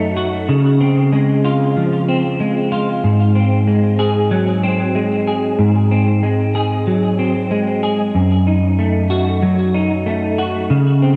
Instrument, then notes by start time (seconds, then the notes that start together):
clean electric guitar
Already playing: F#2 F#3 A3 D#4 F#4
0.17 F#4
0.49 C#3
0.81 C4
1.12 G#3
1.45 F4
1.77 F3
2.09 C4
2.40 G#3
2.72 F4
3.04 G#2
3.35 C4
3.67 G#3
3.99 G#4
4.31 F#3
4.63 C4
4.95 G#3
5.27 G#4
5.59 G#2
5.91 C4
6.23 G#3
6.55 G#4
6.87 F#3
7.19 C4
7.51 G#3
7.83 G#4
8.15 F#2
8.47 D#4
8.79 A3
9.10 F#4
9.43 F#3
9.74 D#4
10.06 A3
10.38 F#4
10.70 C#3
11.02 C4